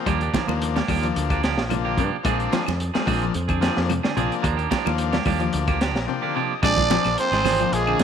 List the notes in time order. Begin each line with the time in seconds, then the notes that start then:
0.06 D#2 F3 G3 A#3 D4 G4, kick, closed hi-hat, high conga, claves
0.21 A#3 D4 G4, closed hi-hat
0.34 D#3 F3 A#3 D4, kick, snare, closed hi-hat, high conga
0.47 D#2 F3 A#3 D4, high conga, claves
0.62 closed hi-hat, high conga
0.76 G3 A#3 D4 G4, snare, closed hi-hat, high conga
0.88 D#2 F3 G3 A#3 D4 G4, kick, open hi-hat, claves
1.01 F3 A#3 D4, closed hi-hat
1.16 D2, closed hi-hat, high conga
1.30 D3 A#3 D4 G4, kick, closed hi-hat, claves
1.43 F3 A#3 D4 G4, snare, closed hi-hat
1.58 A#1, snare
1.69 C3 F3 A#3 D4, closed hi-hat, high conga, claves
1.85 D3 A#3 D4 G4
1.97 G2 C3 F3 A#3 D4 G4, kick, closed hi-hat
2.24 A#1 F3 G#3 A#3 C4 D4 G#4, kick, closed hi-hat, high conga, claves
2.39 C4 D4, muted clean electric guitar stroke, closed hi-hat
2.51 F3 C4 D4 G#4, snare, closed hi-hat, high conga
2.67 F2, snare, closed hi-hat, high conga, claves
2.80 closed hi-hat, high conga
2.94 F3 G#3 A#3 C4 D4 G#4, muted clean electric guitar stroke, snare, closed hi-hat, high conga
3.06 A#1 F3 G#3 C4 D4 G#4, kick, open hi-hat, high conga, claves
3.22 F3, closed hi-hat
3.34 F2, closed hi-hat, high conga
3.48 D3 C4 D4 G#4, kick, closed hi-hat, claves
3.61 F3 A#3 C4 D4 G#4, snare, closed hi-hat
3.77 F2, snare
3.89 C3, closed hi-hat, high conga, claves
4.03 D3 C4 D4 G#4, snare, high conga
4.16 A#1 C3 F3 A#3 C4 D4 G#4, closed hi-hat
4.32 closed hi-hat
4.42 D#2 F3 A#3 D4, muted clean electric guitar stroke, kick, closed hi-hat, claves
4.57 A#3 D4 G4, closed hi-hat
4.70 F3 A#3 D4 G4, muted clean electric guitar stroke, kick, snare, closed hi-hat, high conga
4.85 D#2 F3 A#3 D4, high conga, claves
4.98 closed hi-hat, high conga
5.12 G3 A#3 D4 G4, snare, closed hi-hat, high conga
5.25 D#2 F3 G3 A#3 D4 G4, kick, open hi-hat, high conga, claves
5.39 F3 A#3 D4, closed hi-hat
5.53 D2, closed hi-hat, high conga
5.67 D3 A#3 D4 G4, kick, closed hi-hat, claves
5.80 F3 D4 G4 A#5, snare, closed hi-hat
5.96 A#1, snare
6.07 C3 F3 A#3 D4 G5
6.22 D3 A#3 D4 G4 F5
6.35 C3 F3 A#3 D4 G4 D#5
6.62 A#1 G#3 C4 D4 G#4 D5, muted clean electric guitar stroke, kick, closed hi-hat, claves
6.77 C4 D4 G#4, kick, closed hi-hat, high conga
6.90 F3 A#3 C4 D4 G#4, snare, closed hi-hat, high conga
7.05 A#1, snare, closed hi-hat, claves
7.18 C4 C5, closed hi-hat
7.31 G#1 G#3 C4 D4 G#4, snare, closed hi-hat, high conga
7.44 F3 C4 D4 G#4, snare, open hi-hat, high conga, low conga, claves
7.59 F3 A#3 D4, closed hi-hat
7.72 A#1 G#3 G#4, closed hi-hat
7.87 D3 C4 D4 G#4, claves
7.99 G#1 F3 C4 D4, closed hi-hat, high conga